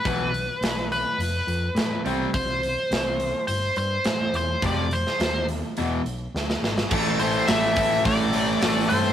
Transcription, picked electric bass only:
X:1
M:4/4
L:1/8
Q:1/4=105
K:Am
V:1 name="Picked electric bass" clef=bass
B,,,2 B,,,2 F,,, F,, A,, C,, | C,,2 C,,2 G,,, G,, A,, E,, | F,,,2 ^D,,2 E,,, B,,, =D,, ^G,,, | A,,,2 A,,, A,,, A,,,2 A,,, G,, |]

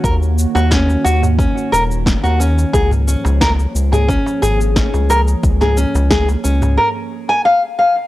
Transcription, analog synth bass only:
X:1
M:4/4
L:1/16
Q:1/4=89
K:Dbmix
V:1 name="Analog synth bass" clef=bass
E,,2 z E,,2 z E,,2 z2 E,,,2 z E,,2 z | D,,2 z D,,2 z D,,2 z2 A,,,2 z D,,2 z | D,,2 z D,,2 z D,,2 z8 |]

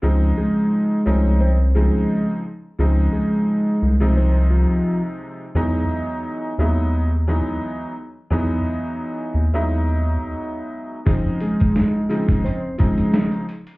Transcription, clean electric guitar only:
X:1
M:4/4
L:1/16
Q:"Swing 16ths" 1/4=87
K:Db
V:1 name="Clean electric guitar"
z2 [A,A]6 [Cc]2 [A,A]3 z3 | z2 [A,A]6 [Cc]2 [F,F]3 z3 | z16 | z16 |
z2 [A,A]6 [Cc]2 [A,A]3 z3 |]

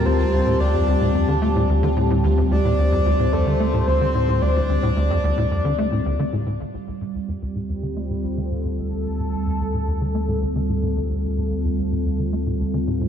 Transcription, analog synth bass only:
X:1
M:4/4
L:1/16
Q:1/4=110
K:Dm
V:1 name="Analog synth bass" clef=bass
D,, D,, D,, A,, D,, F,, D,, A,, F,, D, A, A,, D,, D, A,, A,, | D,, D,, D,, A,, D,, F,, D,, A,, F,, D, A, A,, D,, D, A,, A,, | D,, D,, D,, A,, D,, F,, D,, A,, F,, D, A, A,, D,, D, A,, A,, | D,, D,, D,, A,, D,, F,, D,, A,, F,, D, A, A,, D,, D, A,, A,, |
D,, D,, D,, A,, D,, F,, D,, A,, F,, D, A, A,, D,, D, A,, A,, | D,, D,, D,, A,, D,, F,, D,, A,, F,, D, A, A,, D,, D, A,, A,, |]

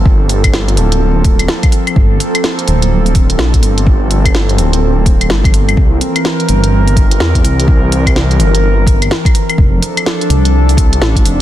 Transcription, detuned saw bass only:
X:1
M:4/4
L:1/8
Q:"Swing 16ths" 1/4=126
K:Gdor
V:1 name="Detuned saw bass" clef=bass
G,,,3 D,,,3 z2 | G,,, z2 D,,,3 B,,, G,,,- | G,,,3 D,,,3 G,,,2 | C,, z2 G,,,3 E,, C,,- |
C,,3 G,,,3 z2 | F,,, z2 C,,3 A,,, F,,, |]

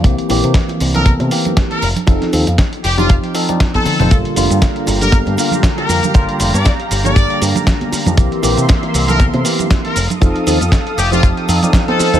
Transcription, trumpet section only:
X:1
M:4/4
L:1/16
Q:"Swing 16ths" 1/4=118
K:Gm
V:1 name="Trumpet section"
z6 z B z4 z B z2 | z6 G F z4 z A3 | z6 z B z4 z B3- | B z2 d z3 d3 z6 |
z6 z B z4 z B z2 | z6 G F z4 z A3 |]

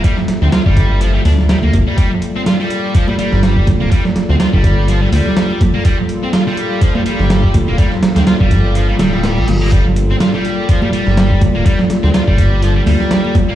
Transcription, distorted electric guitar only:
X:1
M:4/4
L:1/16
Q:"Swing 16ths" 1/4=124
K:Gdor
V:1 name="Distorted electric guitar" clef=bass
G, z2 C F G,3 F, G, D z G, B, z G, | G, z2 C F G,3 F, G, G,4 z B, | G, z2 C F G,3 F, G, G,4 z B, | G, z2 C F G,3 F, G, G,4 z B, |
G, z2 C F G,3 F, G, G,4 z B, | G, z2 C F G,3 F, G, G,4 z B, | G, z2 C F G,3 F, G, G,4 z B, |]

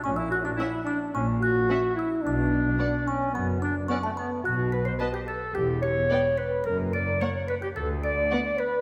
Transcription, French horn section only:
X:1
M:4/4
L:1/16
Q:1/4=109
K:Bm
V:1 name="French horn section"
C E F D E2 D2 C2 F4 E2 | D6 C2 B,2 D2 C A, B,2 | F2 B =c B G A2 G2 ^c4 B2 | ^A2 d2 c2 B G =A2 d4 B2 |]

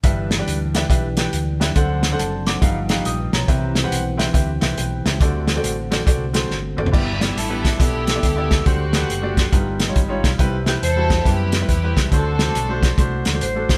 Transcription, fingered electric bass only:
X:1
M:4/4
L:1/8
Q:"Swing" 1/4=139
K:G
V:1 name="Fingered electric bass" clef=bass
G,,,2 D,,2 B,,,2 D,,2 | D,,2 F,,,2 G,,,2 ^A,,, B,,, | C,,2 B,,,2 D,, C,, B,,, ^C,, | D,,2 A,,,2 C,,2 G,,, F,,, |
G,,,2 A,,,2 B,,,2 D,,2 | D,,2 F,,,2 G,,,2 _A,,, B,,, | C,,2 E,,2 F,,2 E,, ^C,, | D,,2 B,,,2 C,, D,, A,,, F,,, |]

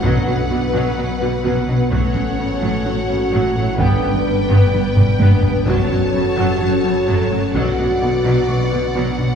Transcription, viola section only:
X:1
M:4/4
L:1/8
Q:1/4=128
K:F#phr
V:1 name="Viola section" clef=bass
F, F, D, F, F, D, F, F, | F, F, C, F, F, C, F, F, | B, B, G, B, B, G, B, B, | F, F, C, F, F, C, F, F, |
F, F, D, F, F, D, F, F, |]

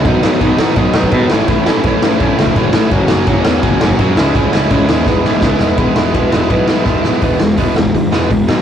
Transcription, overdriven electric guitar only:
X:1
M:4/4
L:1/8
Q:1/4=167
K:E
V:1 name="Overdriven electric guitar"
[B,,D,F,B,D] [B,,D,F,B,D] [B,,D,F,B,D] [B,,D,F,B,D] [B,,D,F,B,D] [B,,D,F,B,D] [B,,D,F,B,D] [A,,E,A,CE] | [A,,E,A,CE] [A,,E,A,CE] [A,,E,A,CE] [A,,E,A,CE] [A,,E,A,CE] [A,,E,A,CE] [A,,E,A,CE] [A,,E,A,CE] | [F,^A,CF] [F,A,CF] [F,A,CF] [F,A,CF] [F,A,CF] [F,A,CF] [F,A,CF] [C,G,CE] | [C,G,CE] [C,G,CE] [C,G,CE] [C,G,CE] [E,G,B,E] [E,G,B,E] [E,G,B,E] [E,G,B,E] |
[E,G,B,E] [E,G,B,E] [E,G,B,E] [E,G,B,E] [E,G,B,E] [E,G,B,E] [E,G,B,E] [E,G,B,E] | [E,G,B,] [E,G,] [E,G,B,] [E,G,] [E,G,] [E,G,B,] [E,G,] [B,,D,F,] |]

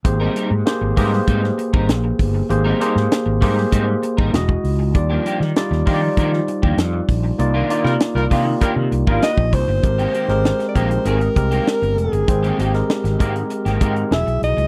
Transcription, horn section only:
X:1
M:4/4
L:1/16
Q:1/4=98
K:Ablyd
V:1 name="Horn section"
z16 | z16 | z16 | z3 [G,FB] z [G,FB] z2 [G,FB] z2 [G,FB]3 z2 |
z16 | z16 |]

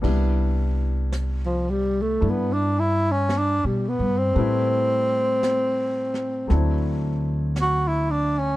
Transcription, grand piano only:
X:1
M:4/4
L:1/8
Q:"Swing" 1/4=56
K:C
V:1 name="Grand piano"
[G,B,DE]4 [DE]4 | [G,A,CEB]4 [^F,A,CDE]4 |]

